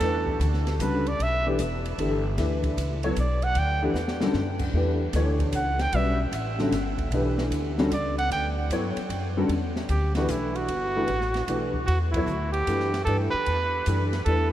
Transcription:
Already playing: A4
0.00 E2 E3 A3 D4 G4 B4, snare, ride
0.27 kick
0.40 D2, hi-hat pedal, ride
0.54 snare
0.67 snare, ride
0.79 C#2 D3 G3 C#4 F#4 A4 B4, hi-hat pedal, ride
1.06 D5, ride
1.19 B1 E5, ride
1.46 E3 A3 D4 G4 B4
1.59 E1, hi-hat pedal, ride
1.85 ride
1.98 G1 E3 A3 D4 G4 A4, ride
2.38 D2 E3 A3 D4 G4 B4, snare, ride
2.64 kick, ride
2.77 C#2, hi-hat pedal, ride
3.03 F#3 B3 E4 A4 C#5, ride
3.16 B1 D5, hi-hat pedal, ride
3.42 F#5, ride
3.55 D2 G5, ride
3.82 E3 A3 D4 G4 B4
3.94 E2, snare, hi-hat pedal
4.08 snare
4.21 D3 G3 C#4 F#4 A4, snare
4.33 F#2, snare
4.59 kick, crash
4.73 E2 E3 A3 D4 G4 B4
5.13 D2 E3 A3 D4 G4 C#5, snare, hi-hat pedal, ride
5.39 kick, ride
5.52 C#2 F#5, hi-hat pedal, ride
5.79 G5, snare, ride
5.92 B1 G3 C#4 F#4 B4 D5 E5, ride
6.31 A1, hi-hat pedal, ride
6.59 D3 G3 C#4 F#4 A4, snare
6.71 G1, snare, hi-hat pedal, ride
6.98 kick, ride
7.11 B1 E3 A3 D4 G4 B4, ride
7.38 snare
7.50 D2, hi-hat pedal, ride
7.78 D3 G3 C#4 F#4 A4, snare
7.91 C#2 D5, hi-hat pedal, ride
8.18 F#5, ride
8.31 D2 G5, ride
8.70 G2 F#3 B3 E4 A4 C#5, hi-hat pedal, ride
8.96 muted upright bass stroke, ride
9.09 F#2, ride
9.37 D3 G3 C#4 F#4 A4
9.49 E2, ride
9.76 snare
9.89 D2 G4, hi-hat pedal, ride
10.15 E3 A3 D4 F#4 G4 B4, snare, ride
10.28 B1 E4, hi-hat pedal, ride
10.55 F#4, ride
10.68 G1, ride
10.96 E3 A3 D4 G4 B4
11.08 A1, ride
11.21 snare
11.34 snare, ride
11.48 B1 E3 A3 D4 G4 B4, hi-hat pedal, ride
11.74 kick
11.86 E2 F#4, ride
12.12 B3 E4, kick, ride
12.16 F#3 E4 A4 C#5
12.26 D2, hi-hat pedal
12.52 G4, ride
12.67 F#2 E3 A3 D4 G4 B4, hi-hat pedal, ride
12.80 snare
12.93 snare, ride
13.05 G2 E3 A3 D4 G4 A4 B4, ride
13.30 B4, muted upright bass stroke
13.46 E2, ride
13.86 F#2 E3 A3 D4 G4 B4, hi-hat pedal, ride
14.13 snare, ride
14.25 E2 E3 A3 D4 G4 A4 B4, ride

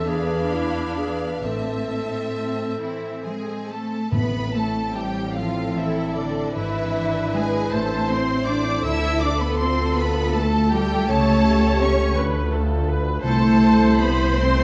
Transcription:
Already playing: E2 E4 A4
0.09 E3 D4 G#4 F5 B5
0.53 D4 E4
0.98 F4 G#4 B4
1.44 A1 A2 C4 A4 E5 A5
1.91 C4
2.35 E4
2.79 E3 E4 A4 E5
3.23 G#3 G#4 C5 G#5
3.68 A3 A4 A5
4.10 A1 A2 B3 C4 E4 B4 B5
4.53 A3 C4 A4 A5
4.94 G3 E4 G4 G5
5.35 F3 F4 A4 F5
5.76 E3 E4 C5 E5
6.15 D3 D4 A4 D5
6.54 G#1 G#2 E3 D4 E4 B4 E5
6.96 D4
7.35 G#3 E4 G#4 B4 G#5
7.72 A1 A2 A3 C4 A4 C5 A5
8.09 C4 C5 C6
8.46 D4 E4 A4 D5 D6
8.84 D2 D3 A3 E4 F4 A4 E5 E6
9.22 A3 D4 D5 D6
9.41 B3 B4 B5
9.57 C4 F4 C5 C6
9.96 B3 A4 B4 B5
10.33 A3 F4 A4 A5
10.70 G3 G4 A4 G5
11.08 C#2 C#3 A3 G4 A4 C#5 A5
11.44 A3
11.79 C#4 G4 A4 C#5 C#6
12.15 D2 D3 F4 B4
12.52 A3 A4
12.88 F4 A4 B4
13.22 C2 C3 A3 E4 A4 C5 A5
13.61 C4
13.99 B3 E4 B4 B5
14.38 A3 C4 E4 A4 C5 C6

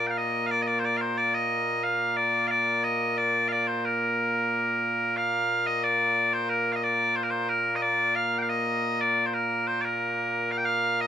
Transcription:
Already playing: A#2 A#3
0.07 F5 G5
0.18 D#5
0.47 F5
0.51 D5
0.62 D#5
0.67 D5
0.79 C5
0.85 D5
0.97 C5 F5
1.18 D5
1.34 D#5
1.84 F5
2.17 D5
2.47 D5 F5
2.84 D#5
3.17 D5
3.48 F5
3.52 D5
3.67 C5
3.85 A#4
5.17 F5
5.67 D#5
5.83 D5
6.33 C5
6.49 A#4
6.72 D#5 F5
6.83 D5
7.16 C5
7.23 A#4
7.30 C5
7.49 A#4
7.75 D#5
7.82 D5
8.15 F5
8.38 F5 G5
8.49 D#5
9.01 D5
9.26 C5
9.34 A#4
9.67 C5
9.81 A#4 D5
10.51 F5
10.58 G5
10.65 F5
11.01 D#5

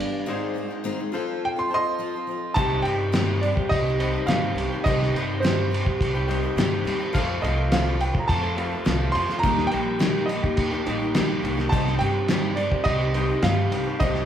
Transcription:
Already playing: G2 D3 G3 B3 D4 G4 D5
0.00 G3 B3 D4 G4, ride
0.27 G#2 D#3 G#3 C4 D#4 G#4 C5
0.54 G#3 C4 D#4 G#4
0.68 G#3 C4 D#4 G#4
0.84 G#2 D#3 G#3 C4 D#4 G#4
0.98 G#3 C4 D#4 G#4
1.12 F3 C4 F4 A4 C5
1.45 G5
1.56 C4 F4 A4 C6
1.69 F3 C4 F4 A4 C5
1.73 A4 D#5 C6
1.85 F4 A4
1.99 F3 C4 F4 A4
2.13 C4 F4 A4
2.27 F3 C4 F4
2.31 A4
2.54 C2 C3 D#3 G3 C4 D#4 G4 C5 D#5 A5, kick, crash
2.70 G3 C4 G4
2.82 G2 D#3 G3 G5, crash
2.87 C4 D#4 G4
3.13 C3 D#3 G3 C4 D#4 G4, snare, crash
3.41 G3 C4 D#4 G4 D5, muted clean electric guitar stroke, crash
3.55 G3 C4 G4, kick
3.69 C2 D#5, kick, crash
3.83 G3 C4 G4
3.88 C4 D#4
3.99 D#3 G3 C4 D#4 G4 C5 D#5, crash
4.04 G4
4.13 C4 D#4 G4
4.27 G2 C3 D#3 G3 C4 D#4 G4 F5, snare, crash
4.42 G3 C4 G4
4.55 C2 D#3 G3 C4 D#4 G4, crash
4.70 G3 C4 D#4 G4
4.75 C4
4.84 C2 C3 D#3 G3 C4 D#4 G4 C5 D#5, kick, crash
4.99 G3 C4 G4, snare
5.13 G2 D#3 G3 C4 G4, crash
5.17 D#4
5.40 C3 D#3 G3 C5
5.44 C4 D#4 G4, snare, crash
5.70 G3 C4 D#4, muted clean electric guitar stroke
5.74 G4, crash
5.84 G3 C4 G4, kick
6.00 C2, kick, crash
6.13 G3 C4 D#4 G4
6.18 C4
6.26 D#3 G3 C4 D#4 G4 C5 D#5
6.31 D#4 G4, crash
6.43 C4 D#4 G4
6.56 G2 C3 D#3 G3 C4 D#4 G4, snare, crash
6.71 G3 C4 G4
6.84 D#2 D#3 G3 C4 D#4 G4, crash
7.00 G3 C4 D#4 G4
7.13 F2 C3 F3 A3 C4 F4 A4 C5 F5, kick, crash
7.28 F3 A3 C4 F4
7.41 C2 F3 A3 C4 F4 D#5, crash
7.47 A4
7.71 F2 C3 F3 A3 C4 F4 A4 F5, snare, crash
7.99 F3 C4 F4 A4 G5, muted clean electric guitar stroke, crash
8.13 F3 A3 C4 F4, kick
8.19 A#5
8.28 F2 A5, kick, crash
8.41 F3 A3 C4 F4 A4
8.46 C4
8.56 F3 A3 C4 F4 A4 C5 F5, crash
8.72 C4 F4 A4
8.85 C2 F2 C3 F3 A3 C4 F4 A4, snare, crash
9.00 F3 A3 C4 F4
9.12 F2 F3 A3 C4 F4 C6, crash
9.18 A4
9.28 F3 A3 C4 F4 A4, snare
9.39 D#2 D#3 A#5
9.43 G3 A#3 D#4 G4 A#4 D#5, kick, crash
9.57 A#3 D#4 G4, snare
9.67 D#3 G3 G5
9.71 A#1 A#3 D#4 G4, crash
10.00 D#3 G3 A#3 D#4 G4, snare, crash
10.26 G3 D#5, muted clean electric guitar stroke, crash
10.30 A#3 D#4 G4
10.43 A#3 D#4 G4, kick
10.57 D#2, kick, crash
10.71 A#3 D#4 G4
10.85 A1 D#3 G3 A#3 D#4 G4 A#4 D#5, crash
11.00 D#4 G4
11.04 A#3
11.15 A#1 D#3 G3 A#3 D#4 G4, snare, crash
11.29 A#3 D#4 G4
11.42 C2 D#3 G3 A#3 D#4 G4, crash
11.57 A#3 D#4 G4, snare
11.69 C2 C3 D#3 G3 C4 D#4 G4 C5 D#5 A5, kick, crash
11.86 G3 C4 G4, snare
11.99 G2 D#3 G3 C4 D#4 G4 G5, crash
12.28 C3 D#3 G3 C4 D#4 G4, snare, crash
12.55 G3 C4 D5, muted clean electric guitar stroke, crash
12.60 D#4 G4
12.71 G3 C4 G4, kick
12.84 C2 D#5, kick, crash
12.98 G3 C4 G4
13.03 C4 D#4
13.13 D#3 G3 C4 D#4 G4 C5 D#5, crash
13.17 D#4
13.29 C4 D#4 G4
13.42 G2 C3 D#3 G3 C4 D#4 G4 F5, snare, crash
13.58 G3 C4 G4
13.71 C2 D#3 G3 C4 D#4 G4, crash
13.86 G3 C4 D#4 G4
14.00 C2 C3 D#3 G3 C4 D#4 G4 C5 D#5, kick, crash
14.15 G3 C4 G4, snare

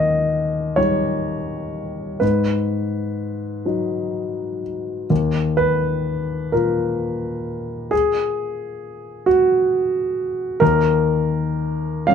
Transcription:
Already playing: D#2 D#5
0.76 G3 D#4 C#5
2.20 G#2 B4
3.66 F#3 D#4
5.10 D#2
5.57 B4
6.52 A#2 A#4
7.91 G#4
9.26 F#4
10.60 D#2 A#4
12.07 G3 C#4 F5

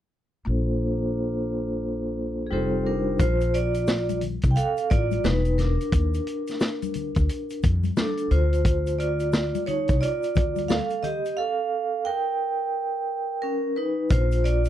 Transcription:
0.45 A#1 A#3 D4 F4 A4
0.49 C5
2.47 G#4
2.51 F1 G3 C4 D#4 F4 G4 A4 C5
2.86 D4 A#4
3.20 A#1 F4 C5, kick, closed hi-hat, shaker
3.41 closed hi-hat, shaker
3.54 F4 D5, closed hi-hat, shaker
3.74 closed hi-hat, shaker
3.87 snare, shaker
4.09 closed hi-hat, high conga, shaker
4.21 closed hi-hat, low conga, shaker
4.42 C2, kick, closed hi-hat, shaker
4.51 G5
4.56 A4 F5, closed hi-hat, shaker
4.77 closed hi-hat, shaker
4.90 A1 F4 D5, kick, closed hi-hat, low conga, shaker
5.11 closed hi-hat, high conga, shaker
5.24 E1 D#4 B4, snare, high conga, shaker
5.45 closed hi-hat, shaker
5.58 D4 A#4, snare, closed hi-hat, low conga, shaker
5.81 closed hi-hat, shaker
5.92 D#2, kick, closed hi-hat, shaker
6.14 closed hi-hat, shaker
6.27 closed hi-hat, shaker
6.47 snare, closed hi-hat, shaker
6.60 snare, shaker
6.82 closed hi-hat, high conga, shaker
6.94 closed hi-hat, low conga, shaker
7.15 D2, kick, closed hi-hat, shaker
7.29 closed hi-hat, shaker
7.50 closed hi-hat, shaker
7.63 F2, kick, closed hi-hat, low conga, shaker
7.84 closed hi-hat, high conga, shaker
7.97 D4 A4, snare, high conga, shaker
8.17 closed hi-hat, shaker
8.31 D2 F4 C5, closed hi-hat, low conga, shaker
8.53 closed hi-hat, shaker
8.65 kick, closed hi-hat, shaker
8.87 closed hi-hat, shaker
8.99 F4 D5, closed hi-hat, shaker
9.20 closed hi-hat, shaker
9.33 snare, shaker
9.55 closed hi-hat, high conga, shaker
9.66 D#4 C#5, closed hi-hat, low conga, shaker
9.88 C2, kick, closed hi-hat, shaker
10.01 F4 D5, closed hi-hat, shaker
10.23 closed hi-hat, shaker
10.35 D2, kick, closed hi-hat, low conga, shaker
10.56 closed hi-hat, high conga, shaker
10.68 A4 F5, snare, high conga, shaker
10.90 closed hi-hat, shaker
11.03 G4 D#5, closed hi-hat, low conga, shaker
11.25 closed hi-hat, shaker
11.37 A4 F5
12.05 A#4 G5
13.42 C#4 A#4
13.76 D#4 B4
14.10 A#1 F4 C5, kick, closed hi-hat, shaker
14.31 closed hi-hat, shaker
14.44 F4 D5, closed hi-hat, shaker
14.65 closed hi-hat, shaker

